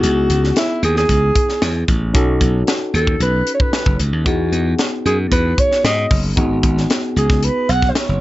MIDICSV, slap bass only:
0, 0, Header, 1, 2, 480
1, 0, Start_track
1, 0, Tempo, 527704
1, 33, Time_signature, 4, 2, 24, 8
1, 7465, End_track
2, 0, Start_track
2, 0, Title_t, "Slap bass"
2, 0, Program_c, 0, 36
2, 27, Note_on_c, 0, 37, 100
2, 221, Note_off_c, 0, 37, 0
2, 271, Note_on_c, 0, 37, 86
2, 463, Note_off_c, 0, 37, 0
2, 752, Note_on_c, 0, 39, 90
2, 944, Note_off_c, 0, 39, 0
2, 993, Note_on_c, 0, 37, 92
2, 1185, Note_off_c, 0, 37, 0
2, 1473, Note_on_c, 0, 40, 98
2, 1665, Note_off_c, 0, 40, 0
2, 1713, Note_on_c, 0, 33, 83
2, 1952, Note_off_c, 0, 33, 0
2, 1952, Note_on_c, 0, 35, 94
2, 2144, Note_off_c, 0, 35, 0
2, 2191, Note_on_c, 0, 35, 84
2, 2384, Note_off_c, 0, 35, 0
2, 2671, Note_on_c, 0, 39, 80
2, 2864, Note_off_c, 0, 39, 0
2, 2911, Note_on_c, 0, 35, 82
2, 3104, Note_off_c, 0, 35, 0
2, 3513, Note_on_c, 0, 30, 84
2, 3609, Note_off_c, 0, 30, 0
2, 3634, Note_on_c, 0, 37, 74
2, 3755, Note_off_c, 0, 37, 0
2, 3755, Note_on_c, 0, 39, 74
2, 3850, Note_off_c, 0, 39, 0
2, 3873, Note_on_c, 0, 40, 104
2, 4065, Note_off_c, 0, 40, 0
2, 4113, Note_on_c, 0, 40, 77
2, 4305, Note_off_c, 0, 40, 0
2, 4597, Note_on_c, 0, 42, 75
2, 4788, Note_off_c, 0, 42, 0
2, 4836, Note_on_c, 0, 40, 87
2, 5027, Note_off_c, 0, 40, 0
2, 5314, Note_on_c, 0, 44, 93
2, 5506, Note_off_c, 0, 44, 0
2, 5557, Note_on_c, 0, 30, 87
2, 5748, Note_off_c, 0, 30, 0
2, 5796, Note_on_c, 0, 32, 93
2, 5987, Note_off_c, 0, 32, 0
2, 6032, Note_on_c, 0, 32, 97
2, 6225, Note_off_c, 0, 32, 0
2, 6516, Note_on_c, 0, 37, 87
2, 6803, Note_off_c, 0, 37, 0
2, 6994, Note_on_c, 0, 35, 78
2, 7187, Note_off_c, 0, 35, 0
2, 7357, Note_on_c, 0, 30, 79
2, 7452, Note_off_c, 0, 30, 0
2, 7465, End_track
0, 0, End_of_file